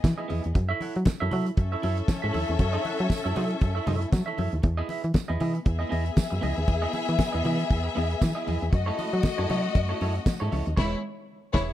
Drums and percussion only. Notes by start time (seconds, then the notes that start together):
0.04 kick, snare, closed hi-hat, tambourine, high conga
0.30 open hi-hat, high conga
0.44 closed hi-hat
0.55 kick, closed hi-hat, muted conga
0.81 open hi-hat, muted conga
0.96 closed hi-hat
1.05 kick, snare, closed hi-hat, tambourine, high conga
1.31 open hi-hat, low conga
1.46 closed hi-hat
1.57 kick, closed hi-hat
1.83 open hi-hat, muted conga
1.97 closed hi-hat
2.08 kick, snare, closed hi-hat, tambourine, high conga
2.34 open hi-hat, high conga
2.48 closed hi-hat
2.59 kick, closed hi-hat, muted conga
2.85 open hi-hat, muted conga
2.99 closed hi-hat
3.10 kick, snare, closed hi-hat, tambourine, high conga
3.36 open hi-hat, low conga
3.50 closed hi-hat
3.61 kick, closed hi-hat
3.87 open hi-hat, low conga
4.01 closed hi-hat
4.13 kick, snare, closed hi-hat, tambourine, high conga
4.38 open hi-hat, high conga
4.52 closed hi-hat
4.63 kick, closed hi-hat, muted conga
4.89 open hi-hat, muted conga
5.04 closed hi-hat
5.14 kick, snare, closed hi-hat, tambourine, high conga
5.40 open hi-hat, low conga
5.55 closed hi-hat
5.66 kick, closed hi-hat
5.92 open hi-hat
6.06 closed hi-hat
6.16 kick, snare, closed hi-hat, tambourine, high conga
6.43 open hi-hat, high conga
6.56 closed hi-hat
6.68 kick, closed hi-hat, muted conga
6.93 open hi-hat, muted conga
7.08 closed hi-hat
7.19 kick, snare, closed hi-hat, tambourine, high conga
7.45 open hi-hat, low conga
7.59 closed hi-hat
7.70 kick, closed hi-hat
7.97 open hi-hat
8.10 closed hi-hat
8.22 kick, snare, closed hi-hat, tambourine, high conga
8.48 open hi-hat, high conga
8.61 closed hi-hat
8.73 kick, closed hi-hat, muted conga
8.99 open hi-hat, muted conga
9.13 closed hi-hat
9.23 kick, snare, closed hi-hat, tambourine, high conga
9.49 open hi-hat, low conga
9.64 closed hi-hat
9.75 kick, closed hi-hat
10.01 open hi-hat, muted conga
10.15 closed hi-hat
10.26 kick, snare, closed hi-hat, tambourine, high conga
10.52 open hi-hat, high conga
10.66 closed hi-hat
10.77 kick, snare, crash
11.54 kick, snare